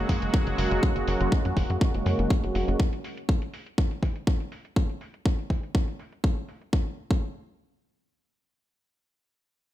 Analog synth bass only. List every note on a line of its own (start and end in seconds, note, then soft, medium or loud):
0.09 0.18 F#2 loud
0.22 0.30 F#1 medium
0.47 0.55 F#1 medium
0.58 0.67 F#1 loud
0.71 0.79 F#1 medium
0.96 1.04 F#1 medium
1.08 1.17 F#1 loud
1.21 1.29 F#1 medium
1.45 1.53 F#2 medium
1.57 1.66 F#1 loud
1.70 1.78 F#2 loud
1.94 2.02 F#1 medium
2.06 2.15 F#2 loud
2.19 2.27 F#1 medium
2.43 2.52 F#1 medium
2.55 2.64 F#1 loud
2.68 2.76 F#1 medium